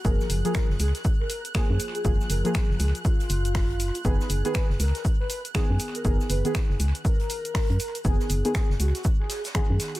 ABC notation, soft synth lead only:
X:1
M:4/4
L:1/16
Q:"Swing 16ths" 1/4=120
K:Blyd
V:1 name="Soft synth lead"
A2 z A2 z G2 z A2 z4 G- | G z A2 z4 E6- E z | B2 z B2 z A2 z B2 z4 A- | A z B2 z4 A6- A z |
G2 z G2 z F2 z G2 z4 F |]